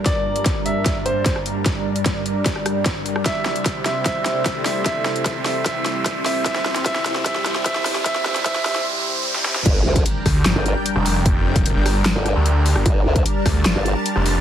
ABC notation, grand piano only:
X:1
M:4/4
L:1/8
Q:1/4=150
K:Gdor
V:1 name="Grand piano"
d3 e z c z2 | z8 | e3 e e3 e | e3 e e3 e |
e2 e2 e2 e2 | e e e e z4 | z8 | z8 |
z8 |]